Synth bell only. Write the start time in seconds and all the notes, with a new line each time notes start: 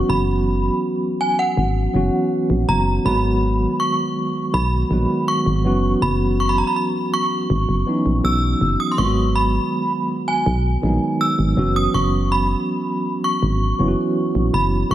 Already playing: C#6
0.10 B5
1.21 G#5
1.39 F#5
2.69 A#5
3.06 B5
3.80 C#6
4.54 B5
5.28 C#6
6.02 B5
6.40 C#6
6.49 B5
6.58 A#5
6.67 B5
6.76 B5
7.14 C#6
8.25 E6
8.80 D#6
8.92 C6
8.98 C#6
9.36 B5
10.28 G#5
11.21 E6
11.76 D#6
11.94 C#6
12.32 B5
13.24 C#6
14.54 B5
14.91 C#6